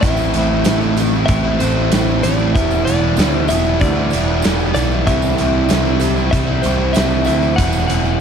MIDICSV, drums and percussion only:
0, 0, Header, 1, 2, 480
1, 0, Start_track
1, 0, Tempo, 628272
1, 24, Time_signature, 4, 2, 24, 8
1, 6269, End_track
2, 0, Start_track
2, 0, Title_t, "Drums"
2, 20, Note_on_c, 9, 42, 99
2, 21, Note_on_c, 9, 36, 110
2, 97, Note_off_c, 9, 42, 0
2, 98, Note_off_c, 9, 36, 0
2, 129, Note_on_c, 9, 54, 73
2, 205, Note_off_c, 9, 54, 0
2, 255, Note_on_c, 9, 54, 25
2, 258, Note_on_c, 9, 42, 77
2, 332, Note_off_c, 9, 54, 0
2, 334, Note_off_c, 9, 42, 0
2, 492, Note_on_c, 9, 54, 91
2, 497, Note_on_c, 9, 42, 107
2, 505, Note_on_c, 9, 38, 117
2, 568, Note_off_c, 9, 54, 0
2, 573, Note_off_c, 9, 42, 0
2, 581, Note_off_c, 9, 38, 0
2, 620, Note_on_c, 9, 54, 25
2, 696, Note_off_c, 9, 54, 0
2, 739, Note_on_c, 9, 54, 68
2, 744, Note_on_c, 9, 42, 74
2, 815, Note_off_c, 9, 54, 0
2, 821, Note_off_c, 9, 42, 0
2, 863, Note_on_c, 9, 54, 25
2, 940, Note_off_c, 9, 54, 0
2, 980, Note_on_c, 9, 42, 86
2, 984, Note_on_c, 9, 54, 25
2, 985, Note_on_c, 9, 36, 102
2, 1056, Note_off_c, 9, 42, 0
2, 1061, Note_off_c, 9, 36, 0
2, 1061, Note_off_c, 9, 54, 0
2, 1223, Note_on_c, 9, 54, 69
2, 1225, Note_on_c, 9, 42, 66
2, 1299, Note_off_c, 9, 54, 0
2, 1301, Note_off_c, 9, 42, 0
2, 1464, Note_on_c, 9, 42, 99
2, 1466, Note_on_c, 9, 54, 83
2, 1473, Note_on_c, 9, 38, 119
2, 1541, Note_off_c, 9, 42, 0
2, 1543, Note_off_c, 9, 54, 0
2, 1549, Note_off_c, 9, 38, 0
2, 1593, Note_on_c, 9, 54, 25
2, 1669, Note_off_c, 9, 54, 0
2, 1704, Note_on_c, 9, 54, 71
2, 1709, Note_on_c, 9, 42, 69
2, 1781, Note_off_c, 9, 54, 0
2, 1785, Note_off_c, 9, 42, 0
2, 1826, Note_on_c, 9, 54, 25
2, 1902, Note_off_c, 9, 54, 0
2, 1952, Note_on_c, 9, 36, 112
2, 1956, Note_on_c, 9, 42, 87
2, 2028, Note_off_c, 9, 36, 0
2, 2032, Note_off_c, 9, 42, 0
2, 2069, Note_on_c, 9, 54, 71
2, 2145, Note_off_c, 9, 54, 0
2, 2189, Note_on_c, 9, 54, 26
2, 2195, Note_on_c, 9, 42, 68
2, 2265, Note_off_c, 9, 54, 0
2, 2271, Note_off_c, 9, 42, 0
2, 2419, Note_on_c, 9, 54, 93
2, 2437, Note_on_c, 9, 42, 94
2, 2446, Note_on_c, 9, 38, 121
2, 2496, Note_off_c, 9, 54, 0
2, 2514, Note_off_c, 9, 42, 0
2, 2522, Note_off_c, 9, 38, 0
2, 2536, Note_on_c, 9, 54, 24
2, 2613, Note_off_c, 9, 54, 0
2, 2658, Note_on_c, 9, 54, 73
2, 2675, Note_on_c, 9, 42, 67
2, 2735, Note_off_c, 9, 54, 0
2, 2751, Note_off_c, 9, 42, 0
2, 2787, Note_on_c, 9, 54, 28
2, 2864, Note_off_c, 9, 54, 0
2, 2900, Note_on_c, 9, 54, 27
2, 2913, Note_on_c, 9, 42, 87
2, 2914, Note_on_c, 9, 36, 99
2, 2976, Note_off_c, 9, 54, 0
2, 2990, Note_off_c, 9, 36, 0
2, 2990, Note_off_c, 9, 42, 0
2, 3136, Note_on_c, 9, 54, 75
2, 3157, Note_on_c, 9, 42, 64
2, 3212, Note_off_c, 9, 54, 0
2, 3233, Note_off_c, 9, 42, 0
2, 3379, Note_on_c, 9, 54, 93
2, 3395, Note_on_c, 9, 42, 100
2, 3403, Note_on_c, 9, 38, 122
2, 3455, Note_off_c, 9, 54, 0
2, 3471, Note_off_c, 9, 42, 0
2, 3480, Note_off_c, 9, 38, 0
2, 3507, Note_on_c, 9, 54, 27
2, 3584, Note_off_c, 9, 54, 0
2, 3626, Note_on_c, 9, 54, 78
2, 3634, Note_on_c, 9, 42, 67
2, 3702, Note_off_c, 9, 54, 0
2, 3711, Note_off_c, 9, 42, 0
2, 3750, Note_on_c, 9, 54, 29
2, 3827, Note_off_c, 9, 54, 0
2, 3874, Note_on_c, 9, 42, 100
2, 3875, Note_on_c, 9, 36, 112
2, 3951, Note_off_c, 9, 36, 0
2, 3951, Note_off_c, 9, 42, 0
2, 3989, Note_on_c, 9, 54, 74
2, 4065, Note_off_c, 9, 54, 0
2, 4113, Note_on_c, 9, 42, 71
2, 4113, Note_on_c, 9, 54, 27
2, 4189, Note_off_c, 9, 42, 0
2, 4189, Note_off_c, 9, 54, 0
2, 4345, Note_on_c, 9, 54, 98
2, 4354, Note_on_c, 9, 42, 99
2, 4362, Note_on_c, 9, 38, 116
2, 4421, Note_off_c, 9, 54, 0
2, 4430, Note_off_c, 9, 42, 0
2, 4439, Note_off_c, 9, 38, 0
2, 4473, Note_on_c, 9, 54, 27
2, 4550, Note_off_c, 9, 54, 0
2, 4581, Note_on_c, 9, 54, 74
2, 4593, Note_on_c, 9, 42, 77
2, 4658, Note_off_c, 9, 54, 0
2, 4669, Note_off_c, 9, 42, 0
2, 4711, Note_on_c, 9, 54, 29
2, 4787, Note_off_c, 9, 54, 0
2, 4830, Note_on_c, 9, 54, 27
2, 4834, Note_on_c, 9, 36, 100
2, 4834, Note_on_c, 9, 42, 92
2, 4906, Note_off_c, 9, 54, 0
2, 4910, Note_off_c, 9, 36, 0
2, 4911, Note_off_c, 9, 42, 0
2, 5065, Note_on_c, 9, 54, 75
2, 5072, Note_on_c, 9, 42, 70
2, 5141, Note_off_c, 9, 54, 0
2, 5149, Note_off_c, 9, 42, 0
2, 5305, Note_on_c, 9, 54, 99
2, 5315, Note_on_c, 9, 42, 101
2, 5323, Note_on_c, 9, 38, 116
2, 5382, Note_off_c, 9, 54, 0
2, 5391, Note_off_c, 9, 42, 0
2, 5400, Note_off_c, 9, 38, 0
2, 5423, Note_on_c, 9, 54, 28
2, 5500, Note_off_c, 9, 54, 0
2, 5535, Note_on_c, 9, 54, 78
2, 5556, Note_on_c, 9, 42, 71
2, 5612, Note_off_c, 9, 54, 0
2, 5632, Note_off_c, 9, 42, 0
2, 5669, Note_on_c, 9, 54, 28
2, 5746, Note_off_c, 9, 54, 0
2, 5794, Note_on_c, 9, 36, 106
2, 5796, Note_on_c, 9, 42, 97
2, 5870, Note_off_c, 9, 36, 0
2, 5872, Note_off_c, 9, 42, 0
2, 5902, Note_on_c, 9, 54, 82
2, 5978, Note_off_c, 9, 54, 0
2, 6021, Note_on_c, 9, 54, 29
2, 6033, Note_on_c, 9, 42, 74
2, 6098, Note_off_c, 9, 54, 0
2, 6110, Note_off_c, 9, 42, 0
2, 6143, Note_on_c, 9, 54, 27
2, 6219, Note_off_c, 9, 54, 0
2, 6269, End_track
0, 0, End_of_file